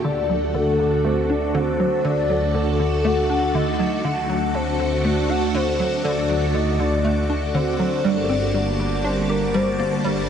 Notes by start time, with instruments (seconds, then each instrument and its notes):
0.05 analog synth bass D2, synth arpeggio sound D3, string machine D3 A3 F#4 A4, synth texture F#4 D6, soft synth lead D5
0.30 synth arpeggio sound F#3
0.55 synth arpeggio sound D3, soft synth lead A4
0.80 synth arpeggio sound D3
1.05 synth arpeggio sound A3, soft synth lead C5
1.30 synth arpeggio sound D4, soft synth lead D5
1.55 synth arpeggio sound D3, soft synth lead C5
1.80 synth arpeggio sound F#3
2.05 synth arpeggio sound D3, soft synth lead D5
2.30 synth arpeggio sound F#3
2.55 synth arpeggio sound D3, soft synth lead A4
2.80 synth arpeggio sound D3
3.05 synth arpeggio sound A3, soft synth lead F#5
3.30 synth arpeggio sound D4
3.54 synth arpeggio sound D3, soft synth lead D#5
3.80 synth arpeggio sound F#3
4.04 synth arpeggio sound D3, soft synth lead F#5
4.30 synth arpeggio sound F#3
4.54 synth arpeggio sound D3, soft synth lead C5
4.80 synth arpeggio sound D3
5.04 synth arpeggio sound A3, soft synth lead D5
5.30 synth arpeggio sound D4, soft synth lead F#5
5.55 synth arpeggio sound D3, soft synth lead C5
5.80 synth arpeggio sound F#3
6.05 analog synth bass D2, synth arpeggio sound D3, soft synth lead D5
6.30 synth arpeggio sound F#3
6.55 synth arpeggio sound D3, soft synth lead D#5
6.80 synth arpeggio sound D3, soft synth lead D5
7.05 synth arpeggio sound A3
7.30 synth arpeggio sound D4
7.55 synth arpeggio sound D3, soft synth lead C5
7.80 synth arpeggio sound F#3
8.04 analog synth bass G1, string machine D3 G3 A#3 A5, synth arpeggio sound G3, soft synth lead D5
8.30 synth arpeggio sound C4
8.54 synth arpeggio sound G3, soft synth lead D5
8.80 synth arpeggio sound G3
9.04 synth arpeggio sound D4, soft synth lead C5
9.29 synth arpeggio sound G4, soft synth lead A#4
9.54 synth arpeggio sound G3, soft synth lead C5
9.79 synth arpeggio sound A#3
10.04 analog synth bass G1, synth arpeggio sound G3, soft synth lead D5